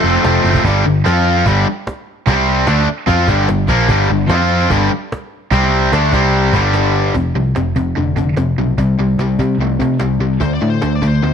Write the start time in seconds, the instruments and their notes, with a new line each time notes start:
Already playing: overdriven electric guitar F2 C3 F3 A3 C4, distorted electric guitar F3, tonewheel organ A3 C4 F4 A4, tenor saxophone A4
0.04 picked electric bass F1, distorted electric guitar A3 C4 F4
0.23 picked electric bass F1, overdriven electric guitar F2 C3, distorted electric guitar F3 A3 C4 F4, cajon slap
0.44 picked electric bass F#1, overdriven electric guitar F3, distorted electric guitar A3 C4 F4, cajon slap
0.54 cajon bass
0.64 picked electric bass G1, distorted electric guitar G2 D3 G3, cajon bass
0.86 picked electric bass G1, distorted electric guitar G2 D3
1.05 picked electric bass F2, distorted electric guitar F3 C4 F4, cajon slap
1.46 picked electric bass G1, distorted electric guitar G2 D3 G3, cajon bass
1.57 cajon slap
1.87 cajon slap
2.27 picked electric bass C2, distorted electric guitar C3 G3 C4, cajon bass
2.67 picked electric bass D2, distorted electric guitar D3 A3 D4, cajon slap
2.88 muted distorted electric guitar stroke, muted overdriven electric guitar stroke
3.07 picked electric bass F2, distorted electric guitar F3 C4 F4, cajon bass
3.28 picked electric bass G1, distorted electric guitar G2 D3 G3, cajon bass
3.49 picked electric bass G1, distorted electric guitar G2 D3, cajon slap
3.68 picked electric bass A#1, distorted electric guitar A#2 F3 A#3, cajon bass
3.88 picked electric bass G1, distorted electric guitar G2 D3 G3, cajon bass
4.06 picked electric bass G1, overdriven electric guitar G2
4.11 distorted electric guitar G2 D3
4.29 picked electric bass F2, distorted electric guitar F3 C4 F4, cajon slap
4.70 picked electric bass G1, distorted electric guitar G2 D3 G3, cajon bass
5.12 cajon slap
5.51 picked electric bass C2, distorted electric guitar C3 G3 C4, cajon bass
5.92 picked electric bass D2, distorted electric guitar D3 A3 D4, cajon slap
6.13 picked electric bass C2, distorted electric guitar C3 G3 C4, cajon bass
6.45 cajon slap
6.53 picked electric bass G1, distorted electric guitar G2 D3 G3, cajon bass
6.74 cajon slap
7.06 cajon slap
7.15 picked electric bass F1, distorted electric guitar F2 C3, cajon bass
7.35 picked electric bass C2, distorted electric guitar F2 C3
7.56 picked electric bass F1, distorted electric guitar F2 C3, cajon slap
7.76 picked electric bass F1, distorted electric guitar F2 C3, cajon bass
7.97 picked electric bass F1, distorted electric guitar F2 D3
8.16 picked electric bass F1, distorted electric guitar F2 D3, cajon bass
8.37 picked electric bass F1, distorted electric guitar F2 C3, cajon slap
8.58 picked electric bass B1, distorted electric guitar F2 C3
8.78 picked electric bass C2, distorted electric guitar C3 G3, cajon bass
8.99 picked electric bass C2, distorted electric guitar C3 G3
9.18 picked electric bass C2, distorted electric guitar C3 G3, cajon slap
9.39 picked electric bass C3, distorted electric guitar C3 G3, cajon bass
9.58 picked electric bass C2, distorted electric guitar C3 A3
9.79 picked electric bass C3, distorted electric guitar C3 A3, cajon bass
9.99 picked electric bass C2, distorted electric guitar C3 G3, cajon slap
10.19 picked electric bass C2, distorted electric guitar C3 G3
10.40 picked electric bass D2, distorted electric guitar D3 A3, lead electric guitar C5, cajon bass
10.54 lead electric guitar D5
10.61 picked electric bass A2, distorted electric guitar D3 A3
10.70 lead electric guitar C5
10.81 picked electric bass D2, distorted electric guitar D3 A3, lead electric guitar C5, cajon slap
10.95 lead electric guitar D5
11.02 picked electric bass D2, distorted electric guitar D3 A3, cajon bass
11.07 lead electric guitar C5
11.22 picked electric bass D2, distorted electric guitar D3 B3, lead electric guitar C5